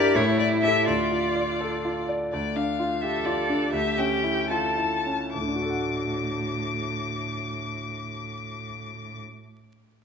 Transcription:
Already playing: grand piano G2 E4 G4 A#4, cello G4, violin D5
0.15 grand piano A2, cello E4, violin C#5
0.39 grand piano E4, violin D5
0.62 grand piano G4 A4, violin E5
0.86 grand piano D2, cello F4, violin D5
1.11 grand piano F4
1.35 grand piano D5
1.61 grand piano A4
1.85 grand piano F4
2.09 grand piano D5
2.33 grand piano D2, violin D5
2.56 grand piano D4, violin F5
2.79 grand piano F4
3.01 grand piano G4, cello A4, violin E5
3.25 grand piano F4, violin D5
3.49 grand piano D4
3.72 grand piano D2, cello G4, violin E5
3.98 grand piano C#4, violin G5
4.24 grand piano E4
4.50 grand piano F4, cello A4, violin A5
4.77 grand piano E4
5.06 grand piano C#4
5.34 grand piano D2, cello A2, violin D6
5.41 grand piano D3
5.48 grand piano D4
5.55 grand piano F#4
5.62 grand piano A4
5.70 grand piano F#5

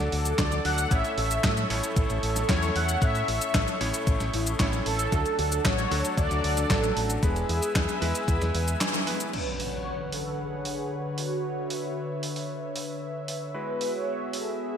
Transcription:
Already playing: electric grand piano F#3 A3 D4 A4, analog synth pad A4 D5 F#5 D6
0.12 fingered electric bass D2, analog polysynth A4, open hi-hat
0.25 closed hi-hat, cabasa
0.38 fingered electric bass D2, analog polysynth D5, kick, snare, clap, closed hi-hat, cabasa
0.52 closed hi-hat, cabasa
0.65 fingered electric bass D2, electric grand piano F#3 A3 D4 A4, analog polysynth F#5, open hi-hat
0.78 closed hi-hat, cabasa
0.91 fingered electric bass A1, electric grand piano A2 A3 C#4 E4 C#5, analog synth pad C#5 E5 C#6, analog polysynth E5, kick, closed hi-hat, cabasa
1.05 closed hi-hat, cabasa
1.17 fingered electric bass A1, analog polysynth E5, open hi-hat
1.31 closed hi-hat, cabasa
1.44 fingered electric bass A2, kick, snare, clap, closed hi-hat, cabasa
1.57 closed hi-hat, cabasa
1.70 fingered electric bass A1, electric grand piano A2 A3 C#4 E4 C#5, open hi-hat
1.84 closed hi-hat, cabasa
1.97 fingered electric bass A1, kick, closed hi-hat, cabasa
2.10 fingered electric bass A1, closed hi-hat, cabasa
2.23 fingered electric bass A1, analog polysynth A4, open hi-hat
2.36 snare, closed hi-hat, cabasa
2.49 fingered electric bass E2, electric grand piano A2 A3 C#4 E4 C#5, analog polysynth C#5, kick, snare, clap, closed hi-hat, cabasa
2.63 closed hi-hat, cabasa
2.75 fingered electric bass E2, analog polysynth F#5, open hi-hat
2.89 closed hi-hat, cabasa
3.02 electric grand piano A2 A3 C#4 E4 C#5, fingered electric bass A2, analog polysynth E5, kick, closed hi-hat, cabasa
3.15 closed hi-hat, cabasa
3.28 fingered electric bass A1, analog polysynth E5, open hi-hat
3.42 closed hi-hat, cabasa
3.54 fingered electric bass A1, kick, snare, clap, closed hi-hat, cabasa
3.68 closed hi-hat, cabasa
3.81 fingered electric bass A1, electric grand piano A2 A3 C#4 E4 C#5, open hi-hat
3.94 closed hi-hat, cabasa
4.07 fingered electric bass A1, kick, closed hi-hat, cabasa
4.20 fingered electric bass A1, snare, closed hi-hat, cabasa
4.34 fingered electric bass A1, analog polysynth E4, open hi-hat
4.47 closed hi-hat, cabasa
4.60 fingered electric bass A1, electric grand piano A2 A3 C#4 E4 C#5, kick, snare, clap, closed hi-hat, cabasa
4.73 closed hi-hat, cabasa
4.86 fingered electric bass A1, analog polysynth A4, open hi-hat
4.99 closed hi-hat, cabasa
5.12 fingered electric bass D2, electric grand piano F#3 A3 D4 A4, analog synth pad D4 A4 F#5 A5, kick, closed hi-hat, cabasa
5.26 closed hi-hat, cabasa
5.39 fingered electric bass D2, open hi-hat
5.52 closed hi-hat, cabasa
5.65 fingered electric bass A1, analog polysynth C#5, kick, snare, clap, closed hi-hat, cabasa
5.78 closed hi-hat, cabasa
5.91 fingered electric bass D2, electric grand piano F#3 A3 D4 A4, open hi-hat
6.05 closed hi-hat, cabasa
6.18 fingered electric bass D2, analog polysynth D5, kick, closed hi-hat, cabasa
6.31 fingered electric bass D2, closed hi-hat, cabasa
6.44 fingered electric bass D2, analog polysynth D5, open hi-hat
6.57 snare, closed hi-hat, cabasa
6.70 fingered electric bass A1, electric grand piano F#3 A3 D4 A4, analog polysynth A4, kick, snare, clap, closed hi-hat, cabasa
6.84 closed hi-hat, cabasa
6.96 fingered electric bass A1, open hi-hat
7.10 closed hi-hat, cabasa
7.23 fingered electric bass E1, electric grand piano G#3 B3 E4 B4, analog polysynth G#4, analog synth pad B4 E5 G#5 E6, kick, closed hi-hat, cabasa
7.36 closed hi-hat, cabasa
7.49 fingered electric bass E2, open hi-hat
7.63 closed hi-hat, cabasa
7.75 fingered electric bass E2, kick, snare, clap, closed hi-hat, cabasa
7.89 closed hi-hat, cabasa
8.02 fingered electric bass E2, electric grand piano G#3 B3 E4 B4, open hi-hat
8.15 closed hi-hat, cabasa
8.28 fingered electric bass E2, kick, closed hi-hat, cabasa
8.41 fingered electric bass E2, snare, closed hi-hat, cabasa
8.54 fingered electric bass E2, open hi-hat
8.68 closed hi-hat, cabasa
8.81 snare, clap, closed hi-hat, cabasa
8.94 closed hi-hat, cabasa
9.07 electric grand piano G#3 B3 E4 B4, open hi-hat
9.20 closed hi-hat, cabasa
9.33 electric grand piano B2 F#3 C#4 D4 B4, analog synth pad D3 B4 C#5 F#5, analog polysynth B4, crash, impact
9.60 open hi-hat
9.73 analog polysynth C#5
10.12 analog polysynth A4, open hi-hat
10.39 analog polysynth G#4
10.65 open hi-hat
11.18 analog polysynth F#4, open hi-hat
11.44 analog synth pad E5
11.70 open hi-hat
12.23 open hi-hat
12.36 open hi-hat
12.76 open hi-hat
13.28 open hi-hat
13.54 electric grand piano G#3 E4 F#4 B4, analog synth pad B3 F#4 G#4, analog polysynth B4
13.81 open hi-hat
13.94 analog polysynth C#5
14.33 analog polysynth A4, open hi-hat
14.60 analog polysynth G#4

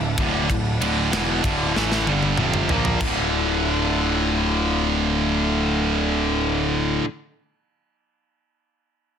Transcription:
Already playing: picked electric bass D1, distorted electric guitar D2 A2, string section D3 D4 E4 A4
0.18 picked electric bass D1, distorted electric guitar D2 A2 D3, kick, ride
0.49 picked electric bass D1, distorted electric guitar D2 A2, kick, ride
0.80 picked electric bass D1, distorted electric guitar D2 A2 D3, ride
1.12 picked electric bass E1, distorted electric guitar E2 B2 E3, snare, ride
1.42 picked electric bass D1, distorted electric guitar D2 A2 D3, kick, ride
1.74 picked electric bass A1, distorted electric guitar A2 E3 A3, snare
1.92 snare
2.05 picked electric bass G1, distorted electric guitar G2 D3 G3, high tom
2.23 high tom
2.37 picked electric bass F1, distorted electric guitar F2 C3 F3, mid tom
2.54 mid tom
2.69 picked electric bass A#1, distorted electric guitar A#2 F3 A#3, floor tom
2.85 floor tom
3.00 picked electric bass D1, distorted electric guitar D2 A2, string section D3 A3 E4 F4, kick, splash
3.04 distorted electric guitar D3

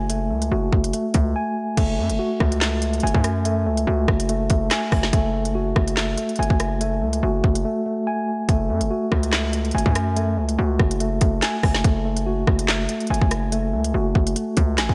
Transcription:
Already playing: 808-style bass F#1, tine electric piano G#5
0.10 tine electric piano A3, closed hi-hat
0.31 808-style bass C#2, tine electric piano A3
0.42 closed hi-hat
0.52 808-style bass F#1, tine electric piano F#4
0.72 808-style bass F#1, kick
0.84 closed hi-hat
0.93 tine electric piano A3, closed hi-hat
1.14 808-style bass C#2, tine electric piano A3, kick, closed hi-hat
1.36 tine electric piano G#5
1.77 808-style bass F#1, tine electric piano A3, kick, closed hi-hat, crash
1.98 808-style bass F#2, tine electric piano A3
2.09 808-style bass F#1, closed hi-hat
2.19 tine electric piano F#4
2.40 808-style bass C#2, kick, cross-stick
2.52 closed hi-hat
2.61 tine electric piano A3, snare, clap
2.82 tine electric piano A3, closed hi-hat
2.93 closed hi-hat
3.00 808-style bass F#1, tine electric piano G#5, closed hi-hat
3.07 closed hi-hat
3.14 808-style bass F#2, kick
3.24 cross-stick, closed hi-hat
3.45 tine electric piano A3, closed hi-hat
3.66 808-style bass C#2, tine electric piano A3
3.77 closed hi-hat
3.87 808-style bass C#2, tine electric piano F#4
4.08 808-style bass F#1, kick, cross-stick
4.20 closed hi-hat
4.29 tine electric piano A3, closed hi-hat
4.50 808-style bass F#1, tine electric piano A3, kick, closed hi-hat
4.71 tine electric piano G#5, snare, clap, closed hi-hat
4.92 808-style bass F#1, kick, cross-stick, open hi-hat
5.03 snare
5.13 808-style bass F#1, tine electric piano A3, kick, closed hi-hat
5.34 tine electric piano A3
5.45 closed hi-hat
5.55 tine electric piano F#4
5.76 808-style bass F#1, kick, cross-stick
5.88 closed hi-hat
5.97 tine electric piano A3, snare, clap
6.18 tine electric piano A3, closed hi-hat
6.29 closed hi-hat
6.36 808-style bass F#1, tine electric piano G#5, closed hi-hat
6.43 closed hi-hat
6.50 808-style bass F#1, kick
6.60 cross-stick, closed hi-hat
6.81 tine electric piano A3, closed hi-hat
7.02 808-style bass C#2, tine electric piano A3
7.13 closed hi-hat
7.23 808-style bass F#1, tine electric piano F#4
7.44 808-style bass F#1, kick
7.55 closed hi-hat
7.65 tine electric piano A3
7.86 tine electric piano A3
8.07 tine electric piano G#5
8.49 808-style bass F#1, tine electric piano A3, kick, closed hi-hat
8.70 808-style bass F#2, tine electric piano A3
8.81 808-style bass F#1, closed hi-hat
8.90 tine electric piano F#4
9.12 808-style bass C#2, kick, cross-stick
9.23 closed hi-hat
9.33 tine electric piano A3, snare, clap
9.53 tine electric piano A3, closed hi-hat
9.65 closed hi-hat
9.71 808-style bass F#1, tine electric piano G#5, closed hi-hat
9.78 closed hi-hat
9.86 808-style bass F#2, kick
9.95 cross-stick, closed hi-hat
10.17 tine electric piano A3, closed hi-hat
10.37 808-style bass C#2, tine electric piano A3
10.49 closed hi-hat
10.58 808-style bass C#2, tine electric piano F#4
10.79 808-style bass F#1, kick, cross-stick
10.91 closed hi-hat
11.00 tine electric piano A3, closed hi-hat
11.21 808-style bass F#1, tine electric piano A3, kick, closed hi-hat
11.42 tine electric piano G#5, snare, clap, closed hi-hat
11.63 808-style bass F#1, kick, cross-stick, open hi-hat
11.75 snare
11.84 808-style bass F#1, tine electric piano A3, kick, closed hi-hat
12.05 tine electric piano A3
12.17 closed hi-hat
12.26 tine electric piano F#4
12.47 808-style bass F#1, kick, cross-stick
12.59 closed hi-hat
12.68 tine electric piano A3, snare, clap
12.89 tine electric piano A3, closed hi-hat
13.00 closed hi-hat
13.07 808-style bass F#1, tine electric piano G#5, closed hi-hat
13.14 closed hi-hat
13.21 808-style bass F#1, kick
13.31 cross-stick, closed hi-hat
13.52 tine electric piano A3, closed hi-hat
13.73 808-style bass C#2, tine electric piano A3
13.84 closed hi-hat
13.94 808-style bass F#1, tine electric piano F#4
14.15 808-style bass F#1, kick
14.27 closed hi-hat
14.36 tine electric piano A3, closed hi-hat
14.57 808-style bass C#2, tine electric piano A3, kick, closed hi-hat
14.78 808-style bass A1, tine electric piano G#5, snare, clap, closed hi-hat
14.89 808-style bass F#1, kick

